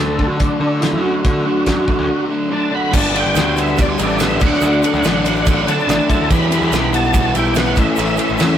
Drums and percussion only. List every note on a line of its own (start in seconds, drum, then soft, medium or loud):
0.19 kick medium
0.40 kick loud
0.40 closed hi-hat medium
0.82 snare loud
0.82 closed hi-hat medium
1.25 kick loud
1.25 closed hi-hat medium
1.66 kick medium
1.66 snare loud
1.66 closed hi-hat medium
1.88 kick medium
2.94 kick loud
2.94 crash loud
2.94 shaker loud
3.16 ride medium
3.25 shaker soft
3.35 snare loud
3.35 ride loud
3.35 shaker loud
3.57 ride medium
3.57 shaker medium
3.67 shaker soft
3.77 kick loud
3.77 ride loud
3.77 shaker loud
3.98 ride medium
3.98 shaker medium
4.09 shaker soft
4.19 snare loud
4.19 ride loud
4.19 shaker loud
4.40 kick loud
4.40 crash loud
4.40 shaker medium
4.54 snare soft
4.61 shaker loud
4.72 shaker soft
4.83 ride medium
4.83 shaker medium
4.94 shaker soft
5.03 snare loud
5.03 ride loud
5.03 shaker loud
5.25 ride medium
5.25 shaker medium
5.35 shaker soft
5.46 kick loud
5.46 ride loud
5.46 shaker loud
5.68 ride medium
5.68 shaker medium
5.79 shaker soft
5.89 snare loud
5.89 ride loud
5.89 shaker loud
6.00 shaker soft
6.10 kick medium
6.10 ride medium
6.10 shaker medium
6.30 kick loud
6.30 ride loud
6.30 shaker loud
6.42 shaker soft
6.51 ride medium
6.51 shaker medium
6.62 shaker soft
6.72 snare loud
6.72 ride loud
6.72 shaker loud
6.93 ride medium
6.93 shaker medium
7.04 shaker soft
7.14 kick loud
7.14 ride loud
7.14 shaker loud
7.35 ride medium
7.35 shaker medium
7.45 shaker soft
7.55 snare loud
7.55 ride loud
7.55 shaker loud
7.65 shaker soft
7.76 kick loud
7.76 ride medium
7.76 shaker medium
7.96 ride loud
7.96 shaker loud
8.07 shaker soft
8.17 ride medium
8.17 shaker medium
8.28 shaker soft
8.38 snare loud
8.38 ride loud
8.38 shaker loud
8.49 shaker soft